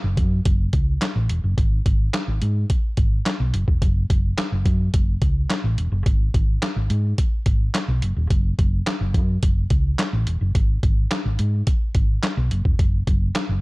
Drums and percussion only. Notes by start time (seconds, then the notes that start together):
0.17 kick, closed hi-hat
0.45 kick, closed hi-hat
0.73 kick, closed hi-hat
1.02 snare, clap, closed hi-hat
1.29 closed hi-hat
1.58 kick, closed hi-hat
1.86 kick, closed hi-hat
2.14 snare, clap, closed hi-hat
2.42 closed hi-hat
2.70 kick, closed hi-hat
2.97 kick, closed hi-hat
3.26 snare, clap, closed hi-hat
3.54 closed hi-hat
3.68 kick
3.82 kick, closed hi-hat
4.10 kick, closed hi-hat
4.38 snare, clap, closed hi-hat
4.66 kick, closed hi-hat
4.94 kick, closed hi-hat
5.22 kick, closed hi-hat
5.50 snare, clap, closed hi-hat
5.78 closed hi-hat
6.06 kick, closed hi-hat
6.34 kick, closed hi-hat
6.62 snare, clap, closed hi-hat
6.90 closed hi-hat
7.18 kick, closed hi-hat
7.46 kick, closed hi-hat
7.74 snare, clap, closed hi-hat
8.02 closed hi-hat
8.30 kick, closed hi-hat
8.59 kick, closed hi-hat
8.87 snare, clap, closed hi-hat
9.14 kick, closed hi-hat
9.43 kick, closed hi-hat
9.70 kick, closed hi-hat
9.99 snare, clap, closed hi-hat
10.27 closed hi-hat
10.55 kick, closed hi-hat
10.83 kick, closed hi-hat
11.11 snare, clap, closed hi-hat
11.39 closed hi-hat
11.67 kick, closed hi-hat
11.95 kick, closed hi-hat
12.23 snare, clap, closed hi-hat
12.51 closed hi-hat
12.65 kick
12.79 kick, closed hi-hat
13.07 kick, closed hi-hat
13.35 snare, clap, closed hi-hat